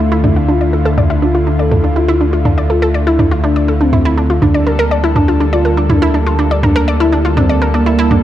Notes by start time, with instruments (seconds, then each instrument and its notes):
Already playing: analog synth bass D2, analog synth pad D3 A3 E4 F4, synth drone D3, analog synth lead A3
0.12 synth arpeggio sound E4
0.24 synth arpeggio sound D4, mid tom
0.36 synth arpeggio sound F4
0.48 synth arpeggio sound D4, analog synth lead F4
0.61 synth arpeggio sound D5
0.73 synth arpeggio sound A4
0.85 synth arpeggio sound A4
0.98 synth arpeggio sound D5, mid tom
1.10 synth arpeggio sound E4
1.22 synth arpeggio sound D4, analog synth lead F4
1.35 synth arpeggio sound F4
1.47 synth arpeggio sound D4
1.59 analog synth lead A4, synth arpeggio sound D5
1.71 synth arpeggio sound A4, mid tom
1.84 synth arpeggio sound D4
1.96 synth arpeggio sound E4, analog synth lead F4
2.08 synth arpeggio sound E4
2.21 synth arpeggio sound D4
2.33 synth arpeggio sound F4
2.45 synth arpeggio sound D4, mid tom
2.58 synth arpeggio sound D5
2.70 analog synth lead F4, synth arpeggio sound A4
2.82 synth arpeggio sound A4
2.94 synth arpeggio sound D5
3.07 analog synth lead E4, synth arpeggio sound E4
3.19 synth arpeggio sound D4, mid tom
3.31 synth arpeggio sound F4
3.43 analog synth lead D4, synth arpeggio sound D4
3.56 synth arpeggio sound D5
3.68 synth arpeggio sound A4
3.80 analog synth lead C4, synth arpeggio sound D4
3.93 synth arpeggio sound E4, mid tom
4.05 synth arpeggio sound E4
4.18 synth arpeggio sound D4
4.30 synth arpeggio sound F4
4.42 analog synth bass D2, analog synth pad G3 A#3 D4 A4, analog synth lead D4, synth arpeggio sound D4, mid tom
4.54 synth arpeggio sound D5
4.67 synth arpeggio sound A#4
4.79 synth arpeggio sound A#4
4.91 synth arpeggio sound D5
5.04 synth arpeggio sound E4
5.16 analog synth lead D4, synth arpeggio sound D4, mid tom
5.28 synth arpeggio sound F4
5.40 synth arpeggio sound D4
5.53 analog synth lead F4, synth arpeggio sound D5
5.65 synth arpeggio sound A#4
5.77 synth arpeggio sound D4
5.89 analog synth lead D4, synth arpeggio sound E4, mid tom
6.02 synth arpeggio sound E4
6.14 synth arpeggio sound D4
6.27 synth arpeggio sound F4
6.39 synth arpeggio sound D4
6.51 synth arpeggio sound D5
6.63 analog synth lead D4, synth arpeggio sound A#4, mid tom
6.76 synth arpeggio sound A#4
6.88 synth arpeggio sound D5
7.00 analog synth lead E4, synth arpeggio sound E4
7.12 synth arpeggio sound D4
7.25 synth arpeggio sound F4
7.37 analog synth lead C4, synth arpeggio sound D4, mid tom
7.49 synth arpeggio sound D5
7.62 synth arpeggio sound A#4
7.74 analog synth lead A#3, synth arpeggio sound D4
7.86 synth arpeggio sound E4
7.99 synth arpeggio sound E4
8.11 synth arpeggio sound D4, mid tom